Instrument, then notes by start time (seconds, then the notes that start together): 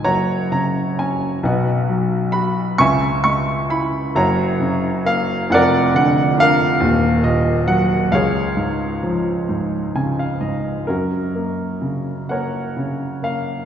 grand piano
0.04 F#1 F#2 C#5 F#5 A#5
0.52 C#3 A#5
0.99 C#4 G#5
1.43 B1 B2 B4 D#5 F#5
1.89 F#3
2.32 F#4 B5
2.78 C#2 C#3 E5 G#5 C#6
3.24 G#3 C#6
3.70 E4 B5
4.15 F#1 F#2 C#5 F#5 A#5
4.60 C#3
5.05 A#3 F5
5.50 F1 F2 F#5
5.54 A#4 D5
5.94 D3 F#5
6.38 D4 A#4 F5
6.80 D#1 D#2
7.24 A#2 D#5
7.67 F#3 F#5
8.12 C#2 G#4 C#5 F5
8.57 G#2
9.03 F3
9.49 G#2
9.95 C#3 G#5
10.19 F5
10.41 G#2 D#5
10.87 F#2 C#4 F#4 A#4
11.35 A#3
11.82 C#3
12.29 A#3 A#4 C#5 F#5
12.77 C#3
13.23 A#3 F5